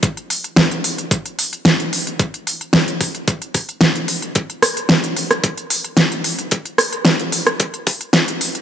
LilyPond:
\new DrumStaff \with { instrumentName = "Drums" } \drummode { \time 4/4 \tempo 4 = 111 <hh bd>16 hh16 hho16 hh16 <hh bd sn>16 hh16 hho16 hh16 <hh bd>16 hh16 hho16 hh16 <hh bd sn>16 hh16 hho16 hh16 | <hh bd>16 hh16 hho16 hh16 <hh bd sn>16 hh16 <hho bd>16 hh16 <hh bd>16 hh16 <hho bd>16 hh16 <hh bd sn>16 hh16 hho16 hh16 | <hh bd>16 hh16 <hho ss>16 hh16 <hh bd sn>16 hh16 hho16 <hh ss>16 <hh bd>16 hh16 hho16 hh16 <hh bd sn>16 hh16 hho16 hh16 | <hh bd>16 hh16 <hho ss>16 hh16 <hh bd sn>16 hh16 hho16 <hh ss>16 <hh bd>16 hh16 <hho bd>16 hh16 <hh bd sn>16 hh16 hho16 hh16 | }